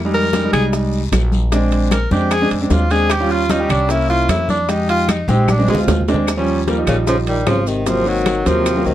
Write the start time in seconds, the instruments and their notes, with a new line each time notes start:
Already playing: upright bass F2
0.05 grand piano G3 G#3 D#4
0.14 tenor saxophone A#4, high bongo, maracas
0.33 grand piano G3 G#3 D#4, high bongo, high conga, high timbale, low timbale, short guiro, maracas
0.44 grand piano G3 G#3 D#4
0.53 upright bass C2, tenor saxophone G#4, high bongo, high conga, low conga, high timbale, short guiro, claves, maracas
0.73 high bongo, long guiro, maracas
0.93 high conga, maracas
1.12 upright bass A#1, high bongo, low bongo, high conga, high timbale, low timbale, short guiro, claves, maracas
1.32 high bongo, high conga, short guiro, maracas
1.52 grand piano G#3 C4 D4, high bongo, high conga, high timbale, long guiro, maracas
1.71 high bongo, high conga, high timbale, maracas
1.91 tenor saxophone A#4, high bongo, high conga, high timbale, low timbale, short guiro, claves, maracas
2.11 upright bass F2, grand piano G#3 C4 D4, tenor saxophone G4, high bongo, high conga, short guiro, maracas
2.31 tenor saxophone G#4, high bongo, high conga, high timbale, long guiro, claves, maracas
2.42 grand piano G#3 C4 D4
2.51 upright bass F2, tenor saxophone C4, high conga, high timbale, maracas
2.62 grand piano G#3 C4 D4
2.70 upright bass D#2, tenor saxophone F4, high bongo, low bongo, high conga, low timbale, short guiro, maracas
2.90 grand piano G#3 C4 D4, tenor saxophone G#4, high bongo, high timbale, short guiro, maracas
3.10 tenor saxophone G4, high bongo, high conga, high timbale, long guiro, claves, maracas
3.20 grand piano G3 C#4 F4
3.30 tenor saxophone F4, high bongo, high conga, maracas
3.49 grand piano G3 C#4 F4, tenor saxophone D#4, high bongo, high conga, high timbale, low timbale, short guiro, maracas
3.60 grand piano G3 C#4 G4
3.69 upright bass C2, tenor saxophone D4, high bongo, high conga, low conga, high timbale, short guiro, claves, maracas
3.89 grand piano A#3 C#4 E4, tenor saxophone E4, high bongo, high conga, long guiro, maracas
4.09 tenor saxophone F4, high conga, maracas
4.29 upright bass F2, tenor saxophone E4, high bongo, low bongo, high conga, high timbale, low timbale, short guiro, claves, maracas
4.49 tenor saxophone D4, high bongo, high conga, short guiro, maracas
4.69 grand piano G#3 D#4 G4, tenor saxophone D#4, high bongo, high conga, high timbale, long guiro, maracas
4.89 tenor saxophone F4, high bongo, high conga, high timbale, maracas
5.09 tenor saxophone D#4, high bongo, high conga, high timbale, low timbale, short guiro, claves, maracas
5.28 upright bass A#1, grand piano G#3 D#4 G4, tenor saxophone C4, high bongo, high conga, short guiro, maracas
5.48 tenor saxophone D4, high bongo, high conga, high timbale, long guiro, claves, maracas
5.59 grand piano G#3 C4 D4, high conga
5.68 upright bass D2, tenor saxophone G#3, low timbale, maracas
5.75 grand piano G#3 C4 F4, low conga
5.88 upright bass D#2, high bongo, low bongo, low conga, low timbale, short guiro, maracas
6.01 low conga
6.08 grand piano G#3 C4 D4, high bongo, low timbale, short guiro, maracas
6.14 low conga
6.27 high bongo, high conga, high timbale, long guiro, claves, maracas
6.37 grand piano F3 G3 C#4
6.48 high conga, maracas
6.67 grand piano F3 G3 A#3, high bongo, high conga, high timbale, low timbale, short guiro, maracas
6.78 grand piano F3 G3 D#4
6.87 upright bass A#1, trombone A#2, tenor saxophone C#3, low conga, high timbale, short guiro, claves, maracas
7.07 trombone C#3, tenor saxophone F3, high bongo, high conga, long guiro, maracas
7.27 trombone D#3, tenor saxophone G3, high conga, high timbale, maracas
7.47 upright bass G#1, trombone C#3, tenor saxophone F3, high bongo, low bongo, high conga, high timbale, low timbale, short guiro, claves, maracas
7.66 trombone C3, tenor saxophone D#3, high conga, short guiro, maracas
7.86 trombone C3, tenor saxophone F3, grand piano F#3 A#3 C4, high bongo, high conga, high timbale, long guiro, maracas
8.06 trombone D#3, tenor saxophone F#3, high conga, maracas
8.26 high bongo, high conga, high timbale, low timbale, short guiro, claves, maracas
8.45 upright bass D#2, trombone C3, tenor saxophone F3, grand piano F#3 A#3 C4, high bongo, high conga, high timbale, short guiro, maracas
8.66 high bongo, high conga, high timbale, long guiro, claves, maracas
8.76 grand piano F#3 A#3 C4
8.85 upright bass C#2, trombone C3, tenor saxophone D#3, high bongo, high conga, maracas